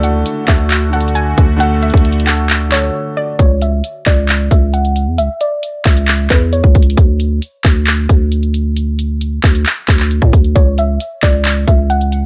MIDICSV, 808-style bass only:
0, 0, Header, 1, 2, 480
1, 0, Start_track
1, 0, Tempo, 447761
1, 1716, Time_signature, 4, 2, 24, 8
1, 13141, End_track
2, 0, Start_track
2, 0, Title_t, "808-style bass"
2, 0, Program_c, 0, 38
2, 0, Note_on_c, 0, 38, 111
2, 257, Note_off_c, 0, 38, 0
2, 517, Note_on_c, 0, 38, 107
2, 1438, Note_off_c, 0, 38, 0
2, 1476, Note_on_c, 0, 38, 107
2, 2052, Note_off_c, 0, 38, 0
2, 2076, Note_on_c, 0, 38, 100
2, 3114, Note_off_c, 0, 38, 0
2, 3636, Note_on_c, 0, 37, 108
2, 4097, Note_off_c, 0, 37, 0
2, 4357, Note_on_c, 0, 37, 109
2, 4817, Note_off_c, 0, 37, 0
2, 4836, Note_on_c, 0, 37, 110
2, 5436, Note_on_c, 0, 40, 102
2, 5453, Note_off_c, 0, 37, 0
2, 5557, Note_on_c, 0, 37, 98
2, 5573, Note_off_c, 0, 40, 0
2, 5671, Note_off_c, 0, 37, 0
2, 6277, Note_on_c, 0, 37, 106
2, 6737, Note_off_c, 0, 37, 0
2, 6756, Note_on_c, 0, 40, 109
2, 7102, Note_off_c, 0, 40, 0
2, 7116, Note_on_c, 0, 37, 101
2, 7231, Note_off_c, 0, 37, 0
2, 7237, Note_on_c, 0, 37, 105
2, 7467, Note_off_c, 0, 37, 0
2, 7477, Note_on_c, 0, 38, 111
2, 7937, Note_off_c, 0, 38, 0
2, 8197, Note_on_c, 0, 38, 103
2, 8657, Note_off_c, 0, 38, 0
2, 8676, Note_on_c, 0, 38, 106
2, 10073, Note_off_c, 0, 38, 0
2, 10117, Note_on_c, 0, 38, 108
2, 10347, Note_off_c, 0, 38, 0
2, 10596, Note_on_c, 0, 38, 109
2, 10942, Note_off_c, 0, 38, 0
2, 10955, Note_on_c, 0, 45, 101
2, 11071, Note_off_c, 0, 45, 0
2, 11076, Note_on_c, 0, 38, 105
2, 11307, Note_off_c, 0, 38, 0
2, 11316, Note_on_c, 0, 37, 108
2, 11777, Note_off_c, 0, 37, 0
2, 12037, Note_on_c, 0, 37, 105
2, 12497, Note_off_c, 0, 37, 0
2, 12516, Note_on_c, 0, 37, 106
2, 13132, Note_off_c, 0, 37, 0
2, 13141, End_track
0, 0, End_of_file